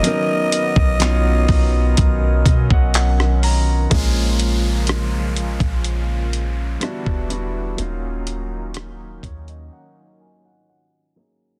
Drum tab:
HH |x-x-x-o-x-x-x-o-|x-x-x-xxx-x-x-x-|x-x-x-xx--------|
CP |----x-------x---|----------------|----------------|
SD |-------------r--|----r-------r---|----r-----------|
BD |---o--o-o-oo----|o------o-----o--|------o---------|